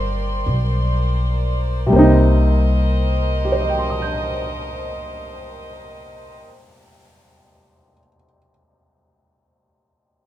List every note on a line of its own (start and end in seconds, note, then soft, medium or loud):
0.00 0.42 G1 medium
0.00 1.91 D#3 soft
0.00 1.88 G3 soft
0.00 1.91 A#3 soft
0.00 1.93 C4 soft
0.00 1.93 D4 soft
0.00 1.87 A#4 medium
0.00 1.87 C5 medium
0.00 1.87 D5 medium
0.00 1.87 C6 medium
0.46 1.87 B1 medium
1.86 6.37 C3 medium
1.86 6.40 G3 medium
1.86 6.37 C5 medium
1.91 6.39 C2 medium
1.91 6.43 A#3 medium
1.91 6.38 A#4 medium
1.91 6.37 D#5 medium
1.96 6.46 C4 medium
1.96 6.49 D#4 medium
3.45 7.91 G4 soft
3.52 7.99 C5 soft
3.61 8.07 D#5 soft
3.69 8.16 G5 soft
3.79 8.25 C6 soft
3.90 8.36 D#6 soft
4.02 8.48 G6 soft